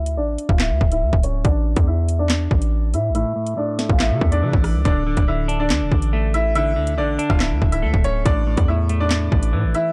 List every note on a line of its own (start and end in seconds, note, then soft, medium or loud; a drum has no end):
0.00 0.19 D2 loud
0.00 0.15 E4 medium
0.00 0.15 E5 loud
0.06 closed hi-hat medium
0.17 0.37 A1 loud
0.17 0.48 D4 medium
0.17 0.47 D5 medium
0.38 closed hi-hat medium
0.49 0.72 D1 loud
0.49 0.58 F4 medium
0.49 0.57 F5 medium
0.49 kick medium
0.59 0.90 E4 medium
0.59 0.90 E5 medium
0.59 snare loud
0.59 clap medium
0.59 closed hi-hat medium
0.70 0.80 D2 loud
0.81 1.04 C#1 loud
0.81 kick medium
0.92 1.22 E4 medium
0.92 1.22 E5 medium
0.92 closed hi-hat medium
1.02 1.12 D2 loud
1.13 1.43 D1 loud
1.13 kick medium
1.23 1.41 C#4 medium
1.23 1.40 C#5 medium
1.23 closed hi-hat medium
1.45 1.75 A1 loud
1.45 1.85 D4 medium
1.45 1.85 D5 loud
1.45 kick loud
1.45 closed hi-hat medium
1.76 2.48 E2 loud
1.76 kick loud
1.76 closed hi-hat medium
1.87 2.18 E4 medium
1.87 2.17 E5 medium
2.09 closed hi-hat medium
2.19 2.90 D4 medium
2.19 2.90 D5 medium
2.29 snare loud
2.29 clap medium
2.29 closed hi-hat medium
2.51 2.95 A1 loud
2.51 kick medium
2.62 closed hi-hat medium
2.94 3.11 A2 loud
2.94 3.11 E4 medium
2.94 3.10 E5 medium
2.94 closed hi-hat medium
3.10 3.25 A1 loud
3.15 3.35 A2 loud
3.15 3.55 E4 medium
3.15 3.55 E5 loud
3.15 closed hi-hat medium
3.36 3.56 A2 medium
3.47 closed hi-hat medium
3.57 4.64 A2 medium
3.57 3.88 D4 medium
3.57 3.88 D5 medium
3.79 4.85 A3 medium
3.79 snare medium
3.79 closed hi-hat medium
3.89 4.12 A1 loud
3.89 3.98 F4 medium
3.89 3.98 F5 medium
3.89 kick medium
4.00 4.31 E4 medium
4.00 4.30 E5 medium
4.00 snare loud
4.00 clap loud
4.00 closed hi-hat medium
4.11 4.21 C#3 loud
4.21 4.44 E2 loud
4.21 kick medium
4.32 4.82 D4 medium
4.32 4.82 D5 medium
4.32 closed hi-hat medium
4.43 4.53 C#3 loud
4.43 4.85 E3 medium
4.53 4.76 A1 loud
4.53 kick medium
4.64 cross-stick medium
4.64 open hi-hat medium
4.75 4.85 C#2 loud
4.85 5.16 D1 loud
4.85 5.05 D3 medium
4.85 5.26 D4 medium
4.85 5.25 D5 medium
4.85 kick loud
4.85 closed hi-hat medium
5.07 5.27 D3 medium
5.17 5.72 D1 loud
5.17 kick loud
5.17 closed hi-hat medium
5.28 6.34 D3 medium
5.28 5.58 E4 medium
5.28 5.58 E5 medium
5.48 6.55 D4 medium
5.48 closed hi-hat medium
5.60 6.30 D4 medium
5.60 6.30 D5 medium
5.70 5.82 D2 loud
5.70 snare loud
5.70 clap medium
5.70 closed hi-hat medium
5.81 5.91 D1 medium
5.92 6.78 A1 loud
5.92 kick medium
6.02 closed hi-hat medium
6.13 7.19 A3 medium
6.34 6.51 E4 medium
6.34 6.51 E5 medium
6.34 closed hi-hat medium
6.55 6.75 D3 loud
6.55 6.96 E4 medium
6.55 6.95 E5 loud
6.55 closed hi-hat medium
6.76 6.99 D2 loud
6.76 6.97 D3 medium
6.87 closed hi-hat medium
6.98 7.18 A1 loud
6.98 8.04 D3 medium
6.98 7.28 D4 medium
6.98 7.28 D5 medium
7.19 8.25 D4 medium
7.19 closed hi-hat medium
7.30 7.53 D1 loud
7.30 7.39 F4 medium
7.30 7.38 F5 medium
7.30 kick medium
7.40 7.71 E4 medium
7.40 7.70 E5 medium
7.40 snare loud
7.40 clap medium
7.40 closed hi-hat medium
7.51 7.61 D2 loud
7.62 7.85 C#1 loud
7.62 kick medium
7.72 8.03 E4 medium
7.72 8.02 E5 medium
7.72 closed hi-hat medium
7.82 7.93 D2 loud
7.82 8.25 A3 medium
7.94 8.24 D1 loud
7.94 kick medium
8.04 8.21 C#4 medium
8.04 8.21 C#5 medium
8.04 closed hi-hat medium
8.25 8.56 A1 loud
8.25 8.46 A2 medium
8.25 8.66 D4 medium
8.25 8.66 D5 loud
8.25 kick loud
8.25 closed hi-hat medium
8.47 8.67 A2 medium
8.57 9.29 E2 loud
8.57 kick loud
8.57 closed hi-hat medium
8.68 9.75 A2 medium
8.68 8.99 E4 medium
8.68 8.98 E5 medium
8.89 9.93 A3 medium
8.89 closed hi-hat medium
9.00 9.71 D4 medium
9.00 9.71 D5 medium
9.10 snare loud
9.10 clap medium
9.10 closed hi-hat medium
9.32 9.55 A1 loud
9.32 kick medium
9.43 closed hi-hat medium
9.53 9.65 A2 loud
9.53 9.93 E3 medium
9.64 9.74 A1 loud
9.74 9.92 E4 medium
9.74 9.91 E5 medium
9.74 closed hi-hat medium